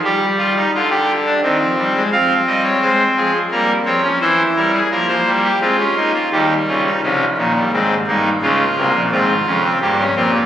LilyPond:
<<
  \new Staff \with { instrumentName = "Pipe organ" } { \time 3/4 \key f \minor \tempo 4 = 86 g'8 f'16 ees'16 f'16 g'8 d'16 c'4 | c'2 bes8 c'16 des'16 | e'4 bes4 c'16 des'16 ees'16 f'16 | g'8 f'16 ees'16 des'8 bes8 c'8 ees'8 |
f'4 f'4 g'8 f'8 | }
  \new Staff \with { instrumentName = "Pipe organ" } { \clef bass \time 3/4 \key f \minor << { r2. | f''8 ees''16 des''16 c''8 aes'8 bes'8 des''8 | c''8 bes'16 aes'16 bes'16 c''8 g'16 f'4 | <ees, ees>8 <des, des>8 <c, c>8 <bes,, bes,>8 <aes,, aes,>8 <g,, g,>8 |
<des, des>8 <c, c>16 <bes,, bes,>16 <aes,, aes,>8 <f,, f,>8 <g,, g,>8 <bes,, bes,>8 | } \\ { g4 d4 ees16 f16 g16 aes16 | f8 g8 aes8 f8 g8 f8 | e8 g8 f8 g8 aes8 bes8 | g4 f8 ees16 g16 aes8 bes8 |
aes8 bes8 c'8 des'16 c'16 bes16 des'16 c'16 bes16 | } >> }
>>